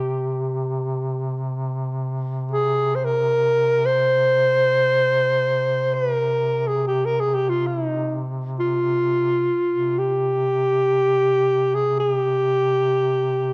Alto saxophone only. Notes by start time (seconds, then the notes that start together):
Already playing: G4
2.51 G#4
2.95 C5
3.05 A#4
3.86 C5
5.94 B4
6.13 A#4
6.67 G#4
6.87 G4
7.05 A#4
7.20 G#4
7.35 G4
7.49 F4
7.67 E4
7.87 D#4
8.59 F4
9.99 G4
11.75 G#4
12.00 G#4
12.12 G4